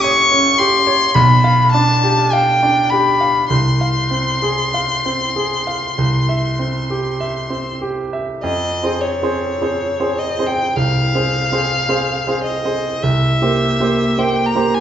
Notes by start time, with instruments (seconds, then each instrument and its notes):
Already playing: grand piano A#1 C#4 G4 C#5
0.02 grand piano C#5, violin C#6
0.32 grand piano C#4
0.58 grand piano G4, violin C6
0.87 grand piano C#5
1.15 grand piano B1, violin B5
1.44 grand piano F5
1.72 grand piano D4, violin A5
2.03 grand piano G4
2.32 grand piano F5, violin G5
2.63 grand piano D4
2.90 grand piano G4, violin B5
3.21 grand piano F5
3.50 grand piano C2, violin C6
3.81 grand piano F5
4.11 grand piano C4
4.42 grand piano G#4
4.74 grand piano F5
5.06 grand piano C4
5.36 grand piano G#4
5.67 grand piano F5
5.98 grand piano C2
6.29 grand piano E5
6.59 grand piano C4
6.90 grand piano G4
7.20 grand piano E5
7.50 grand piano C4
7.81 grand piano G4
8.13 grand piano E5
8.43 grand piano F2, violin D#5
8.83 grand piano C4 G#4 C5
9.01 violin C#5
9.23 grand piano C4 G#4 C5
9.62 grand piano C4 G#4 C5
10.00 grand piano C4 G#4 C5
10.19 violin D#5
10.39 grand piano C4 G#4 C5
10.47 violin G5
10.76 grand piano C2, violin F5
11.15 grand piano C4 G#4 C5
11.52 grand piano C4 G#4 C5
11.89 grand piano C4 G#4 C5
12.27 grand piano C4 G#4 C5
12.44 violin D#5
12.65 grand piano C4 G#4 C5
13.03 grand piano C2, violin E5
13.42 grand piano A#3 G4 C5
13.80 grand piano A#3 G4 C5
14.18 grand piano A#3 G4 C5, violin G5
14.46 violin A#5
14.55 grand piano A#3 G4 C5
14.75 violin G#5